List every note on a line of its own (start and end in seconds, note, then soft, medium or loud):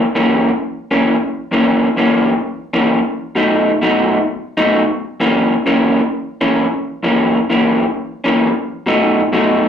0.15 0.50 F#2 medium
0.15 0.50 E3 medium
0.15 0.50 A#3 medium
0.15 0.50 C#4 medium
0.91 1.16 F#2 medium
0.91 1.16 E3 medium
0.91 1.16 A#3 medium
0.91 1.16 C#4 loud
1.51 1.87 F#2 medium
1.51 1.87 E3 medium
1.51 1.87 A#3 medium
1.51 1.88 C#4 medium
1.97 2.32 F#2 medium
1.97 2.33 E3 medium
1.97 2.33 A#3 medium
1.97 2.33 C#4 medium
2.73 2.99 F#2 medium
2.73 2.99 E3 medium
2.73 2.99 A#3 medium
2.73 2.99 C#4 loud
3.35 3.71 B2 medium
3.35 3.71 F#3 medium
3.35 3.71 A3 medium
3.35 3.71 D#4 medium
3.82 4.17 B2 medium
3.82 4.17 F#3 medium
3.82 4.17 A3 medium
3.82 4.18 D#4 medium
4.57 4.83 B2 medium
4.57 4.83 F#3 medium
4.57 4.83 A3 medium
4.57 4.83 D#4 loud
5.20 5.55 F#2 medium
5.20 5.55 E3 medium
5.20 5.55 A#3 medium
5.20 5.55 C#4 medium
5.66 6.01 F#2 medium
5.66 6.01 E3 medium
5.66 6.01 A#3 loud
5.66 6.01 C#4 loud
6.41 6.66 F#2 medium
6.41 6.66 E3 medium
6.41 6.66 A#3 medium
6.41 6.66 C#4 loud
7.03 7.38 F#2 medium
7.03 7.38 E3 medium
7.03 7.38 A#3 medium
7.03 7.38 C#4 medium
7.50 7.84 F#2 medium
7.50 7.84 E3 medium
7.50 7.84 A#3 medium
7.50 7.85 C#4 medium
8.24 8.50 F#2 medium
8.24 8.50 E3 medium
8.24 8.50 A#3 medium
8.24 8.49 C#4 medium
8.86 9.21 B2 medium
8.86 9.21 F#3 medium
8.86 9.22 A3 medium
8.86 9.22 D#4 medium
9.33 9.67 B2 medium
9.33 9.67 F#3 medium
9.33 9.67 A3 loud
9.33 9.68 D#4 medium